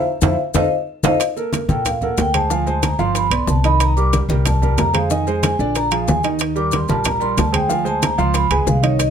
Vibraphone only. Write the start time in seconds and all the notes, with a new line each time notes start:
0.22 C5 E5 F5
0.55 C5 D#5 F5
1.04 C5 D#5 F5
1.70 G5
1.86 F5
2.02 F#5
2.20 G5
2.35 A5
2.52 G#5
2.68 A5
2.84 A#5
3.00 C6
3.17 B5
3.32 C6
3.49 A5
3.65 B5
3.82 A#5
3.97 D6
4.46 A5
4.78 A#5
4.94 F5
5.11 G#5
5.44 G#5
5.77 A#5
5.92 F5
6.08 G#5
6.57 D6
6.73 C6
6.90 A5
7.07 A#5
7.22 C6
7.38 A5
7.55 G5
7.71 G#5
7.87 A5
8.04 A#5
8.20 C6
8.36 B5
8.51 G#5
8.68 F5
8.84 C#5
9.00 D#5